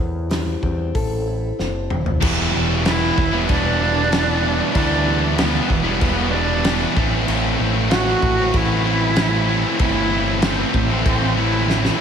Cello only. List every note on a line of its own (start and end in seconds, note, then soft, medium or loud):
2.86 3.45 E4 loud
3.49 4.71 D4 loud
4.75 5.34 D4 loud
5.37 5.96 B3 medium
5.99 6.32 B3 medium
6.31 6.95 D4 loud
7.91 8.57 F#4 loud
8.56 9.80 E4 loud
9.81 10.39 E4 loud
10.45 11.02 C4 medium
11.08 11.36 C4 loud
11.39 11.97 E4 loud